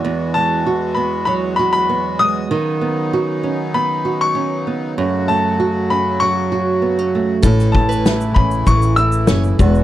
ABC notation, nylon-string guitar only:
X:1
M:4/4
L:1/16
Q:1/4=97
K:Alyd
V:1 name="Nylon-string guitar"
E,,2 G,2 F2 B,2 F,2 F2 B,2 G,2 | D,2 B,2 F2 C2 B,2 F2 C2 B,2 | F,,2 A,2 F2 C2 F,2 F2 B, C A,2 | A,,2 A,2 E2 C2 E,2 E2 C2 E,,2 |]